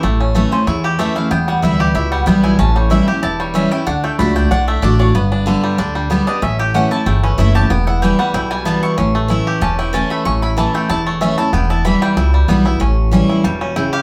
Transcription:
<<
  \new Staff \with { instrumentName = "Mandolin" } { \time 4/4 \key a \mixolydian \tempo 4 = 188 r4. c''8 cis''8 d''8 e''8 f''8 | g''8 fis''8 e''8 d''8 e''8 fis''8 g''8 gis''8 | a''8 cis''8 e''8 g''8 a''8 cis''8 e''8 g''8 | fis''8 g''8 b''8 g''8 fis''8 e''8 d''8 cis''8 |
b'2 r4. ees''8 | e''8 g''8 fis''8 a''8 g''8 b'8 e''8 a''8 | g''8 fis''8 g''8 fis''8 g''8 gis''8 a''8 cis'''8~ | cis'''8 r4. a''8 g''8 a''8 b''8 |
cis'''8 b''8 a''8 g''8 a''8 cis''8 e''8 a''8 | g''8 a''8 b''8 g''2~ g''8 | r2. g''8 f''8 | }
  \new Staff \with { instrumentName = "Five-string banjo" } { \time 4/4 \key a \mixolydian <a e' g'>8 cis'8 a8 cis'8 e'8 g'8 a8 e'8 | b8 g8 e'8 g'8 e'8 g8 b8 e'8 | cis'8 g8 e'8 g'8 e'8 g8 cis'8 e'8 | d'8 a8 d'8 d'8 d'8 a8 d'8 d'8 |
b8 d'8 d8 g8 d'8 g8 b8 d'8 | cis'8 g'8 cis'8 e'8 a8 cis'8 e'8 g'8 | b8 e'8 e8 g8 e'8 g8 b8 e'8 | cis'8 a8 e'8 g'8 cis'8 e'8 cis'8 a8 |
cis'8 e'8 e8 a8 e'8 a8 cis'8 e'8 | b8 e'8 e8 g8 e'8 g8 b8 e'8 | cis'4 cis'8 e'8 g8 cis'8 e'8 g'8 | }
  \new Staff \with { instrumentName = "Steel-string acoustic guitar" } { \time 4/4 \key a \mixolydian << { r4 <e a cis' e'>8 <cis' e'>8 r4 <e a cis' e'>8 <cis' e'>8 | r4 <e g b e'>4 r4 <e g b e'>4 | r4 <e g cis' e'>8 <cis' e'>8 r4 <e g cis' e'>8 <cis' e'>8 | r4 <a d' fis'>4 r4 <d a d' fis'>8 <d' fis'>8 |
r4 <d g b g'>4 r4 <d g b g'>8 <b g'>8 | r4 <e a cis' e'>8 <cis' e'>8 r4 <e a cis' e'>8 <cis' e'>8 | r4 <e g b e'>8 <b e'>8 r4 <e g b e'>4 | r4 <e a cis' e'>4 r4 <e a cis' e'>4 |
r4 <e a cis' e'>4 r4 <e a cis' e'>8 <cis' e'>8 | r4 <e g b e'>4 r4 <e g b e'>8 <b e'>8 | r4 <e g cis' e'>4 r2 | } \\ { a,2 e,2 | e,2 b,2 | a,2 e,2 | d2 a,2 |
g,2 d2 | a,2 e,2 | e,2 b,2 | a,2 e,2 |
a,2 e,2 | e,2 b,2 | a,2 b,4 cis4 | } >> }
  \new Staff \with { instrumentName = "Upright bass" } { \clef bass \time 4/4 \key a \mixolydian a,,2 e,2 | e,,4 d,4 cis,4 b,,4 | a,,2 e,,2 | d,4 cis,4 b,,4 a,,4 |
g,,2 d,2 | a,,2 g,,4 fis,,4 | e,,2 b,,2 | a,,2 e,,2 |
a,,2 e,,2 | e,,2 cis,4 b,,4 | a,,2 e,,2 | }
>>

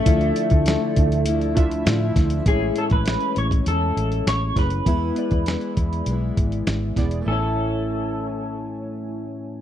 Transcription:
<<
  \new Staff \with { instrumentName = "Clean electric guitar" } { \time 4/4 \key a \major \tempo 4 = 100 a2~ a8 r4. | gis'8 a'16 b'8. cis''8 a'4 cis''8 b'8~ | b'2. r4 | a'1 | }
  \new Staff \with { instrumentName = "Synth keys" } { \time 4/4 \key a \major <a d' e' f' d''>4. r4 <a d' e' f' e''>4. | <a e' gis' cis''>8 <a e' gis' cis''>4. r4. <a e' gis' b'>8 | <b e' gis' e''>8 <b e' gis' d''>4. r4. <b e' gis' d''>8 | <a e' cis'' gis''>1 | }
  \new Staff \with { instrumentName = "Steel-string acoustic guitar" } { \clef bass \time 4/4 \key a \major <d f a e'>4 <d f a e'>4 <d f a e'>4 <d f a e'>4 | <a, e gis cis' e'>4 <e gis cis' e'>4 <e cis' e'>2 | <e gis b e'>4 <e gis b e'>4 <e gis b e'>2 | <a, e cis' e'>1 | }
  \new Staff \with { instrumentName = "Fingered electric bass" } { \clef bass \time 4/4 \key a \major d,8 r16 d,8 r16 d,4. a,8 d,8 | a,,8 r16 a,,8 r16 a,,8 e,8 a,,8 a,,8 fis,,8 | e,8 r16 e,8 r16 e,8 b,,8 gis,,8 gis,,8 e,,8 | a,,1 | }
  \new DrumStaff \with { instrumentName = "Drums" } \drummode { \time 4/4 <hh bd>16 hh16 hh16 <hh bd>16 <hh sn>8 <hh bd>16 hh16 hh16 hh16 <hh bd>16 hh16 <hh sn>8 <hh bd sn>16 hh16 | <hh bd>8 hh16 <hh bd>16 <hh sn>16 hh16 hh16 <hh bd>16 hh8 hh16 hh16 <hh sn>8 <hh bd sn>16 hh16 | <hh bd>8 hh16 <hh bd>16 <hh sn>16 hh16 <hh bd>16 hh16 hh8 <hh bd>16 hh16 <hh sn>8 <hh bd sn>16 hh16 | r4 r4 r4 r4 | }
>>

